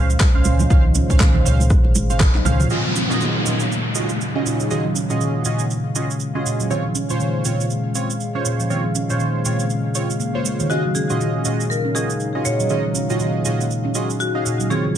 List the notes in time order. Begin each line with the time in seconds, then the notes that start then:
Already playing: C#2 C#3 G#3 C5 F5
0.10 muted conga, cabasa
0.20 kick, cross-stick, clap, cabasa
0.35 C#2 C#4 C5 F5
0.44 A#2, muted conga, high conga, cabasa
0.59 F3, high conga, low conga, cabasa
0.70 C#2 D#3 C#4 C5 F5, kick, muted conga, cabasa
0.85 F3
0.95 C#4, muted conga, cabasa
1.10 C#2 A#2 C#4 C5 F5, kick, cabasa
1.19 D#3, kick, cross-stick, clap, muted conga, high conga, cabasa
1.35 low conga
1.45 C#2 A#2 C#4 C5 F5, cabasa
1.59 muted conga, high conga, cabasa
1.70 kick, cross-stick, cabasa
1.84 G#1, muted conga
1.95 high conga, cabasa
2.10 C#4 C5 F5, muted conga, cabasa
2.19 kick, cross-stick, clap, high tom, low conga, cabasa
2.35 C#2 D#4, clap, high tom
2.45 A#2 C#4 C5 F5, mid tom, muted conga, high conga, low conga, cabasa
2.60 F3, mid tom, cabasa
2.70 C#3 D#3 F#3 G#3 C#4 D#4 F4 F#4 G#4 D#5 F5, downlifter, cabasa
2.85 F#3
2.95 C#4, cabasa
3.10 A#2 C#4 F4 F#4 G#4 D#5, cabasa
3.20 D#3, cabasa
3.45 A#2 C#4 F4 F#4 G#4 D#5, cabasa
3.60 cabasa
3.72 cabasa
3.95 C#4 F4 F#4 G#4 D#5, cabasa
4.09 cabasa
4.21 cabasa
4.35 C#4 F4 F#4 G#4 D#5
4.45 A#2, cabasa
4.60 F#3, cabasa
4.70 D#3 C#4 F4 F#4 G#4 D#5, cabasa
4.85 F#3
4.95 C#4, cabasa
5.10 A#2 C#4 F4 F#4 G#4 D#5, cabasa
5.20 D#3, cabasa
5.45 A#2 C#4 F4 F#4 G#4 D#5, cabasa
5.59 cabasa
5.70 cabasa
5.95 C#4 F4 F#4 G#4 D#5, cabasa
6.10 cabasa
6.20 cabasa
6.35 C#4 F4 F#4 G#4 D#5
6.45 A#2, cabasa
6.60 F#3, cabasa
6.70 D#3 C4 F4 C#5, cabasa
6.85 F3
6.95 C#4, cabasa
7.10 A#2 F4 C5 C#5, cabasa
7.20 D#3, cabasa
7.45 A#2 C4 F4 C#5, cabasa
7.60 cabasa
7.70 cabasa
7.95 C4 F4 C#5, cabasa
8.10 cabasa
8.20 cabasa
8.35 C#4 F4 C5 C#5
8.45 A#2, cabasa
8.60 F3, cabasa
8.70 D#3 C4 F4 C#5, cabasa
8.84 F3
8.95 C#4, cabasa
9.10 A#2 F4 C5 C#5, cabasa
9.20 D#3, cabasa
9.45 A#2 C4 F4 C#5, cabasa
9.59 cabasa
9.70 cabasa
9.95 C4 F4 C#5, cabasa
10.10 cabasa
10.20 A#3, cabasa
10.35 A#3 F4 C5 C#5
10.45 G#3, cabasa
10.60 D#3, cabasa
10.70 D#3 F#3 C#4 D#4 F4 F#4 G#4 D#5, cabasa
10.85 F#3
10.95 C#4 G#4, cabasa
11.10 A#2 C#4 F4 F#4 G#4 D#5, cabasa
11.20 D#3, cabasa
11.45 A#2 C#4 F4 F#4 G#4 D#5, cabasa
11.60 cabasa
11.70 A#4, cabasa
11.85 C#4
11.95 C#4 F4 F#4 G#4 D#5, cabasa
12.10 cabasa
12.20 cabasa
12.35 C#4 F4 F#4 G#4 D#5
12.45 A#2 C#5, cabasa
12.60 F#3, cabasa
12.69 D#3 C#4 F4 F#4 G#4 D#5, cabasa
12.85 F#3
12.95 C#4, cabasa
13.10 A#2 C#4 F4 F#4 G#4 D#5, cabasa
13.19 D#3, cabasa
13.45 A#2 C#4 F4 F#4 G#4 D#5, cabasa
13.61 cabasa
13.71 cabasa
13.85 C#4
13.95 C#4 F4 F#4 G#4 D#5, cabasa
14.10 cabasa
14.20 F#4, cabasa
14.35 C#4 F#4 G#4 D#5 F5
14.45 A#2, cabasa
14.60 F#3, cabasa
14.70 C#3 D#3 G#3 C4 F4 G#4 C#5, riser, cabasa
14.85 F3